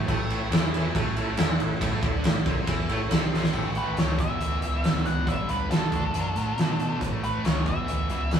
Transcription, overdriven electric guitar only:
0.07 0.50 A2 loud
0.07 0.51 A3 loud
0.51 0.94 E3 loud
0.51 0.94 E4 loud
0.95 1.37 A2 medium
0.95 1.37 A3 loud
1.38 1.59 E3 medium
1.38 1.59 E4 loud
1.59 1.76 A2 medium
1.81 2.02 A2 medium
1.81 2.02 A3 loud
2.03 2.24 D3 medium
2.03 2.24 D4 loud
2.25 2.42 A2 medium
2.46 2.67 C3 loud
2.46 2.67 C4 loud
2.68 2.89 E3 medium
2.68 2.89 E4 loud
2.89 3.10 A2 medium
2.89 3.10 A3 loud
3.10 3.53 C3 medium
3.10 3.54 C4 loud
3.54 3.75 A2 medium
3.54 3.75 E3 loud
3.54 3.76 A3 medium
3.76 3.96 A2 medium
3.76 3.96 E3 medium
3.76 3.97 A3 medium
3.97 4.17 A2 medium
3.97 4.18 E3 medium
3.97 4.18 A3 loud
4.19 4.40 E2 medium
4.19 4.40 B2 medium
4.19 4.40 E3 medium
4.41 4.61 E2 medium
4.41 4.62 B2 medium
4.41 4.62 E3 medium
4.62 4.83 E2 medium
4.62 4.83 B2 medium
4.62 4.84 E3 medium
4.84 5.04 E2 medium
4.84 5.05 B2 medium
4.84 5.05 E3 medium
5.05 5.26 E2 medium
5.05 5.26 B2 medium
5.05 5.26 E3 medium
5.26 5.48 G2 medium
5.26 5.48 D3 medium
5.26 5.49 G3 medium
5.49 5.68 G2 medium
5.49 5.69 D3 medium
5.49 5.69 G3 medium
5.69 5.90 G2 medium
5.69 5.90 D3 medium
5.69 5.91 G3 loud
5.91 6.13 D3 medium
5.91 6.13 A3 medium
5.91 6.14 D4 loud
6.14 6.35 D3 medium
6.14 6.36 A3 medium
6.14 6.36 D4 medium
6.36 6.56 D3 medium
6.36 6.57 A3 medium
6.36 6.57 D4 medium
6.57 6.78 D3 medium
6.57 6.78 A3 medium
6.57 6.79 D4 medium
6.79 7.00 D3 medium
6.79 7.00 A3 medium
6.79 7.00 D4 medium
7.02 7.22 A2 medium
7.02 7.22 E3 medium
7.02 7.23 A3 loud
7.23 7.43 A2 medium
7.23 7.44 E3 medium
7.23 7.45 A3 medium
7.44 7.65 A2 medium
7.44 7.65 E3 loud
7.44 7.66 A3 loud
7.66 7.87 E2 medium
7.66 7.87 B2 loud
7.66 7.88 E3 loud
7.88 8.09 E2 medium
7.88 8.09 B2 medium
7.88 8.10 E3 medium
8.10 8.30 E2 medium
8.10 8.31 B2 medium
8.10 8.31 E3 loud
8.31 8.40 E2 medium
8.31 8.40 B2 medium
8.31 8.40 E3 medium

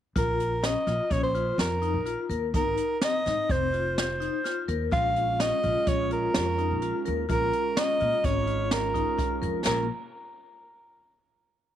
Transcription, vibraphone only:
0.16 0.49 F4 medium
0.63 0.80 C#4 medium
0.87 1.04 F4 medium
1.10 1.28 C#4 medium
1.35 1.68 F4 medium
1.82 1.99 D#4 medium
2.06 2.23 F4 medium
2.30 2.47 A#4 medium
2.54 2.88 D#4 medium
3.02 3.19 C4 medium
3.26 3.43 D#4 medium
3.49 3.66 C4 medium
3.73 4.07 F4 medium
4.20 4.37 D#4 medium
4.44 4.61 F4 medium
4.68 4.85 A#4 medium
4.92 5.25 F4 medium
5.40 5.56 C#4 medium
5.64 5.80 F4 medium
5.87 6.04 C#4 medium
6.11 6.44 F4 medium
6.58 6.75 D#4 medium
6.82 6.99 F4 medium
7.06 7.22 A#4 medium
7.29 7.62 F4 medium
7.76 7.93 C#4 medium
8.00 8.17 F4 medium
8.24 8.40 C#4 medium
8.47 8.81 F4 medium
8.94 9.11 D#4 medium
9.18 9.35 F4 medium
9.42 9.58 A#4 medium
9.65 9.87 A#3 medium

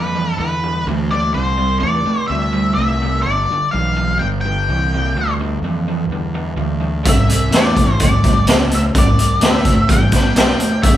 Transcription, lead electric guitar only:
0.00 0.38 B4 medium
0.39 0.84 B4 medium
1.11 1.34 D5 medium
1.34 1.79 C5 medium
1.80 2.27 D5 medium
2.28 2.73 E5 medium
2.75 3.22 E5 medium
3.22 3.68 D5 medium
3.71 4.19 F5 loud
4.19 4.26 G5 loud
4.41 5.33 G5 loud
7.09 7.55 E5 loud
7.55 8.00 D5 medium
8.01 8.45 D5 medium
8.75 8.81 E5 medium
8.98 9.41 D5 medium
9.44 9.87 E5 medium
9.91 10.37 G5 medium
10.38 10.83 G5 medium
10.83 10.97 E5 medium

